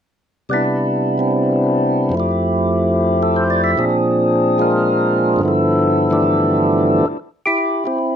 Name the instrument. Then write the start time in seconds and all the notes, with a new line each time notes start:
tonewheel organ
0.49 C3 G3 B3 D4
0.54 E4
1.18 G3 C4 D4
2.09 F2 F3
2.15 A3 E4
2.20 G4
3.23 A4
3.36 C5
3.50 D5
3.64 E5
3.78 A#2 F3 C4 D4 G#4
4.58 G#3 D4 F4 A#4
5.36 G2 D3
5.41 F3 B3 E4
5.48 A4
6.10 D3 E3 A3 D4 G4
7.46 E4 G4
7.85 C4 E4